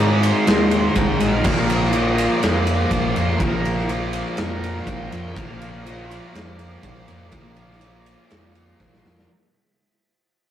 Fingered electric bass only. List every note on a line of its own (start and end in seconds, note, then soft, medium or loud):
0.00 0.31 G#2 loud
0.48 0.88 D#2 medium
0.96 1.18 C2 medium
1.21 1.42 A#1 medium
1.45 2.26 A#1 loud
2.44 2.84 F2 medium
2.91 3.11 A#1 loud
3.16 3.36 F2 medium
3.40 4.21 A#1 loud
4.38 4.79 F2 loud
4.87 5.07 A#1 loud
5.12 5.32 F2 medium
5.36 6.18 A#1 loud
6.35 6.76 F2 medium
6.84 7.04 A#1 loud
7.09 7.29 F2 medium
7.33 8.14 A#1 loud
8.32 8.72 F2 medium
8.80 9.00 A#1 loud
9.05 9.25 F2 medium